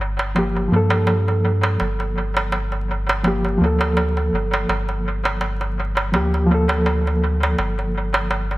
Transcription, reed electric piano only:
0.35 F3 A#3 G4
0.68 F3 A#3
0.76 A4
3.23 F3 A#3
3.28 G4
3.58 F3 A#3
3.66 A4
6.12 F3 A#3 G4
6.47 F3 A#3
6.54 A4

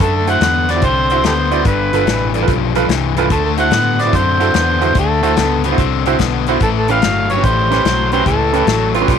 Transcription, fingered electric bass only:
0.00 F#2
0.41 E2
0.83 C2
1.24 D2
1.65 G1
2.06 A1
2.48 B1
2.89 C2
3.30 D2
3.71 A2
4.13 F#2
4.54 E2
4.96 D2
5.37 C#2
5.78 C2
6.20 B1
6.61 A1
7.02 G1
7.44 A1
7.85 B1
8.26 C#2
8.67 A1
9.08 B1

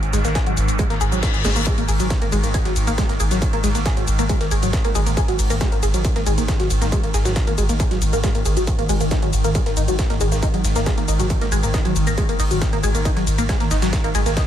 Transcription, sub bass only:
0.03 G#1
0.13 G#1
0.25 G#1
0.46 G#1
0.57 G#1
0.68 G#1
0.90 G#1
1.01 G#1
1.12 G#1
1.34 G#1
1.45 G#1
1.56 G#1
1.78 G#1
1.89 G#1
2.00 G#1
2.22 G#1
2.32 G#1
2.44 G#1
2.65 G#1
2.76 G#1
2.87 G#1
3.09 G#1
3.20 G#1
3.31 G#1
3.53 G#1
3.64 G#1
3.75 G#1
3.97 G#1
4.08 G#1
4.19 G#1
4.41 G#1
4.51 G#1
4.63 G#1
4.85 G#1
4.95 G#1
5.07 G#1
5.28 G#1
5.39 G#1
5.50 G#1
5.72 G#1
5.83 G#1
5.94 G#1
6.16 G#1
6.27 G#1
6.38 G#1
6.60 G#1
6.70 G#1
6.82 G#1
7.04 G#1
7.14 G#1
7.25 G#1
7.47 G#1
7.58 G#1
7.69 G#1
7.91 G#1
8.02 G#1
8.13 G#1
8.35 G#1
8.45 G#1
8.57 G#1
8.79 G#1
8.89 G#1
9.01 G#1
9.22 G#1
9.33 G#1
9.44 G#1
9.66 G#1
9.77 G#1
9.88 G#1
10.10 G#1
10.21 G#1
10.32 G#1
10.54 G#1
10.64 G#1
10.76 G#1
10.98 G#1
11.08 G#1
11.19 G#1
11.41 G#1
11.52 G#1
11.63 G#1
11.85 G#1
11.96 G#1
12.07 G#1
12.29 G#1
12.40 G#1
12.51 G#1
12.73 G#1
12.83 G#1
12.95 G#1
13.17 G#1
13.27 G#1
13.38 G#1
13.60 G#1
13.71 G#1
13.82 G#1
14.04 G#1
14.15 G#1
14.26 G#1

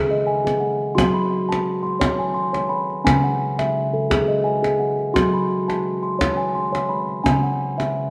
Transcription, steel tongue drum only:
Already playing: C#3 G#4 A4
0.11 D#5
0.27 G#5
0.45 G#4
0.60 F#5
0.95 F#3 F#4 C6
1.14 B5
1.49 A5
1.83 C6
2.00 C#5
2.19 G#5
2.34 C6
2.53 C#5
2.69 B5
3.04 C#3 C#4 G#5
3.24 F#5
3.59 E5
3.93 A4
4.10 G#4
4.28 D#5
4.44 G#5
4.63 G#4
4.80 F#5
5.14 F#3 F#4 C6
5.34 B5
5.68 A5
6.03 C6
6.19 C#5
6.37 G#5
6.55 C6
6.72 C#5
6.89 B5
7.24 C#3 C#4 G#5
7.43 F#5
7.78 E5

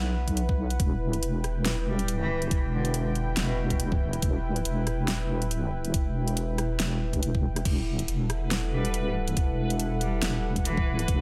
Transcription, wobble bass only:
Already playing: B1
0.80 E1
1.23 E1
2.51 E1
3.37 E1
4.23 E1
4.65 E1
5.94 E1
6.80 E1
7.22 E1
7.65 E1
8.08 E1
9.37 E1
10.23 E1
10.82 D#1
11.08 E1

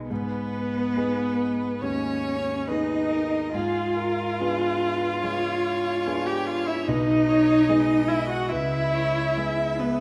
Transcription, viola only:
0.10 B3
1.83 C#4
2.69 D#4
3.53 F4
6.27 G4
6.46 F4
6.67 E4
6.86 D#4
8.08 E4
8.29 F#4
8.49 E4
9.80 B3

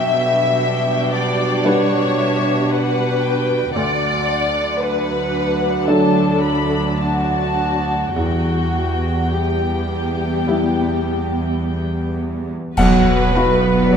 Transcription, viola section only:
Already playing: G3 D4
3.74 F#3 D4
8.15 G3 B3
12.77 B4
13.91 D5

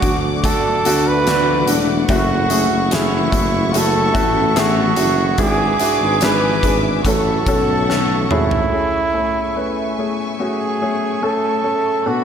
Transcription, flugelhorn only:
Already playing: F#4
0.46 A4
1.08 B4
2.12 F#4
2.95 E4
3.77 A4
4.60 F#4
5.42 G#4
6.24 B4
7.07 A4
8.32 E4
10.41 G#4
11.24 A4
12.07 F#4

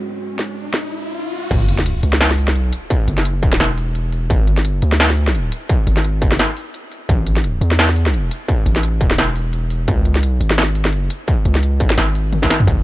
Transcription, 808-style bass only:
1.51 F#1
2.03 C#2
2.52 C2
3.08 F#1
3.60 E1
4.30 G#1
4.66 G1
4.83 D2
5.87 G#1
6.23 G1
7.09 A1
7.61 E2
8.66 A1
9.18 E1
9.88 C#2
10.24 C2
10.40 G#1
10.88 G1
11.45 C#2
11.98 G#1
12.67 F#1

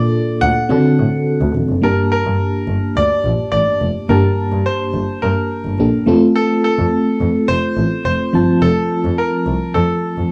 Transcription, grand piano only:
Already playing: D5
0.41 F#5
1.84 A#4
2.12 A#4
2.97 D5
3.52 D5
4.09 A#4
4.66 C5
5.22 A#4
6.36 A4
6.64 A4
7.48 C5
8.05 C5
8.62 A4
9.18 A#4
9.74 A4

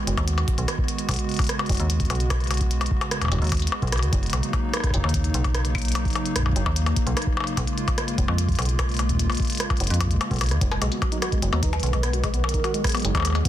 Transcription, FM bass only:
0.07 F#1
0.17 D#2
0.58 B1
1.09 B1
1.69 F#1
1.80 D#2
2.10 B1
3.32 F#1
3.42 D#2
3.82 B1
4.03 D#2
4.13 F#1
4.33 B1
4.94 F#1
5.04 D#2
5.34 B1
6.56 F#1
6.66 D#2
7.07 B1
7.57 B1
8.18 F1
8.28 F2
8.59 B1
9.80 F1
9.90 F2
10.31 B1
10.51 D#2
10.61 F1
10.82 B1
11.42 F#1
11.53 D#2
11.83 B1
13.05 F#1
13.15 D#2

